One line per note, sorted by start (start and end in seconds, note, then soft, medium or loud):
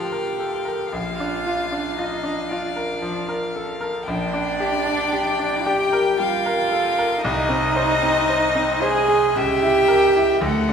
0.00 0.89 D2 medium
0.00 0.28 F3 soft
0.00 0.95 D4 soft
0.00 0.95 F4 soft
0.00 0.94 G4 medium
0.00 0.12 A#4 soft
0.00 0.88 F5 medium
0.00 0.92 G5 medium
0.12 0.55 A#4 soft
0.39 0.66 A4 soft
0.65 0.92 A#4 soft
0.92 4.03 A#1 medium
0.92 1.96 F4 medium
0.92 4.03 F5 medium
0.92 1.99 F5 medium
1.20 1.61 D4 soft
1.46 1.87 F4 medium
1.72 2.13 D4 soft
1.96 2.51 D#4 medium
1.96 2.39 F4 medium
1.96 2.50 D#5 medium
2.24 2.65 D4 medium
2.48 3.54 D4 medium
2.48 2.92 F4 medium
2.48 3.54 D5 medium
2.76 3.18 A#4 soft
3.02 3.44 F3 soft
3.29 3.70 A#4 medium
3.56 3.81 A4 soft
3.81 4.07 A#4 medium
4.06 7.19 A#1 medium
4.06 5.67 D4 loud
4.06 5.67 D5 medium
4.06 7.19 G5 medium
4.34 4.76 D4 medium
4.60 5.03 G4 medium
4.85 5.28 D4 medium
5.13 5.55 G4 medium
5.39 5.81 D4 medium
5.65 6.19 G4 loud
5.65 6.08 G4 medium
5.65 6.18 G5 loud
5.93 6.34 A#4 medium
6.17 6.61 G3 medium
6.17 7.20 F4 loud
6.17 7.24 F5 medium
6.46 6.87 A#4 medium
6.72 6.97 A4 medium
6.98 7.23 A#4 medium
7.21 9.34 C2 medium
7.21 8.84 D#4 loud
7.21 8.85 D#5 loud
7.21 9.39 D#5 medium
7.49 7.91 C4 medium
7.76 8.18 C5 medium
8.02 8.45 C4 medium
8.29 8.72 C5 medium
8.55 8.99 C4 medium
8.82 9.38 G#4 loud
8.82 9.26 C5 medium
8.82 9.38 G#5 loud
9.08 9.36 G#4 medium
9.35 10.40 C#2 medium
9.35 10.43 G4 loud
9.35 10.44 E5 medium
9.35 10.44 G5 loud
9.62 10.06 E4 medium
9.88 10.32 A#4 medium
10.16 10.43 E4 medium
10.41 10.73 D2 medium
10.41 10.73 A3 loud
10.41 10.73 F#5 medium
10.45 10.73 A4 loud
10.69 10.73 D4 medium